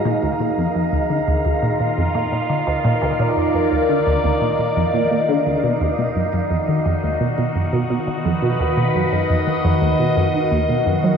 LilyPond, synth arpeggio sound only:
\new Staff \with { instrumentName = "Synth arpeggio sound" } { \clef bass \time 4/4 \key bes \phrygian \tempo 4 = 86 bes,16 d,16 bes,16 f,16 f,16 d,16 d16 d,16 d,16 bes,16 bes,16 f,16 bes,16 bes,16 d16 d,16 | bes,16 d,16 bes,16 f,16 f,16 d,16 d16 d,16 d,16 bes,16 bes,16 f,16 bes,16 bes,16 d16 d,16 | b,16 dis,16 b,16 fis,16 fis,16 f,16 dis16 f,16 dis,16 b,16 b,16 fis,16 b,16 b,16 dis16 f,16 | b,16 dis,16 b,16 fis,16 fis,16 f,16 dis16 f,16 dis,16 b,16 fis,16 dis16 dis,16 b,16 fis,16 fis16 | }